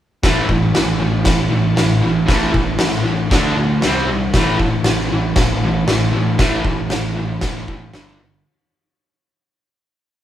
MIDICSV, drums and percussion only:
0, 0, Header, 1, 2, 480
1, 0, Start_track
1, 0, Tempo, 515021
1, 207, Time_signature, 4, 2, 24, 8
1, 9543, End_track
2, 0, Start_track
2, 0, Title_t, "Drums"
2, 217, Note_on_c, 9, 49, 56
2, 218, Note_on_c, 9, 36, 106
2, 219, Note_on_c, 9, 38, 116
2, 311, Note_off_c, 9, 49, 0
2, 312, Note_off_c, 9, 36, 0
2, 312, Note_off_c, 9, 38, 0
2, 457, Note_on_c, 9, 36, 69
2, 550, Note_off_c, 9, 36, 0
2, 696, Note_on_c, 9, 49, 59
2, 698, Note_on_c, 9, 38, 112
2, 789, Note_off_c, 9, 49, 0
2, 791, Note_off_c, 9, 38, 0
2, 1164, Note_on_c, 9, 49, 64
2, 1166, Note_on_c, 9, 38, 117
2, 1172, Note_on_c, 9, 36, 114
2, 1257, Note_off_c, 9, 49, 0
2, 1259, Note_off_c, 9, 38, 0
2, 1265, Note_off_c, 9, 36, 0
2, 1649, Note_on_c, 9, 49, 54
2, 1651, Note_on_c, 9, 38, 109
2, 1742, Note_off_c, 9, 49, 0
2, 1744, Note_off_c, 9, 38, 0
2, 2127, Note_on_c, 9, 49, 57
2, 2129, Note_on_c, 9, 36, 111
2, 2129, Note_on_c, 9, 38, 105
2, 2221, Note_off_c, 9, 49, 0
2, 2222, Note_off_c, 9, 36, 0
2, 2223, Note_off_c, 9, 38, 0
2, 2369, Note_on_c, 9, 36, 80
2, 2463, Note_off_c, 9, 36, 0
2, 2595, Note_on_c, 9, 49, 57
2, 2597, Note_on_c, 9, 38, 112
2, 2689, Note_off_c, 9, 49, 0
2, 2690, Note_off_c, 9, 38, 0
2, 3087, Note_on_c, 9, 36, 110
2, 3093, Note_on_c, 9, 49, 51
2, 3095, Note_on_c, 9, 38, 114
2, 3180, Note_off_c, 9, 36, 0
2, 3186, Note_off_c, 9, 49, 0
2, 3188, Note_off_c, 9, 38, 0
2, 3560, Note_on_c, 9, 49, 55
2, 3562, Note_on_c, 9, 38, 108
2, 3654, Note_off_c, 9, 49, 0
2, 3655, Note_off_c, 9, 38, 0
2, 4040, Note_on_c, 9, 49, 55
2, 4042, Note_on_c, 9, 38, 110
2, 4044, Note_on_c, 9, 36, 103
2, 4133, Note_off_c, 9, 49, 0
2, 4135, Note_off_c, 9, 38, 0
2, 4137, Note_off_c, 9, 36, 0
2, 4283, Note_on_c, 9, 36, 75
2, 4376, Note_off_c, 9, 36, 0
2, 4513, Note_on_c, 9, 49, 55
2, 4515, Note_on_c, 9, 38, 122
2, 4606, Note_off_c, 9, 49, 0
2, 4608, Note_off_c, 9, 38, 0
2, 4993, Note_on_c, 9, 49, 61
2, 4994, Note_on_c, 9, 38, 110
2, 4998, Note_on_c, 9, 36, 115
2, 5086, Note_off_c, 9, 49, 0
2, 5088, Note_off_c, 9, 38, 0
2, 5091, Note_off_c, 9, 36, 0
2, 5476, Note_on_c, 9, 49, 55
2, 5477, Note_on_c, 9, 38, 108
2, 5569, Note_off_c, 9, 49, 0
2, 5571, Note_off_c, 9, 38, 0
2, 5954, Note_on_c, 9, 49, 61
2, 5956, Note_on_c, 9, 38, 116
2, 5957, Note_on_c, 9, 36, 114
2, 6047, Note_off_c, 9, 49, 0
2, 6049, Note_off_c, 9, 38, 0
2, 6050, Note_off_c, 9, 36, 0
2, 6194, Note_on_c, 9, 36, 76
2, 6287, Note_off_c, 9, 36, 0
2, 6430, Note_on_c, 9, 49, 57
2, 6432, Note_on_c, 9, 38, 111
2, 6523, Note_off_c, 9, 49, 0
2, 6525, Note_off_c, 9, 38, 0
2, 6908, Note_on_c, 9, 49, 56
2, 6910, Note_on_c, 9, 38, 119
2, 6917, Note_on_c, 9, 36, 111
2, 7001, Note_off_c, 9, 49, 0
2, 7003, Note_off_c, 9, 38, 0
2, 7011, Note_off_c, 9, 36, 0
2, 7160, Note_on_c, 9, 36, 76
2, 7253, Note_off_c, 9, 36, 0
2, 7394, Note_on_c, 9, 49, 48
2, 7396, Note_on_c, 9, 38, 106
2, 7487, Note_off_c, 9, 49, 0
2, 7489, Note_off_c, 9, 38, 0
2, 9543, End_track
0, 0, End_of_file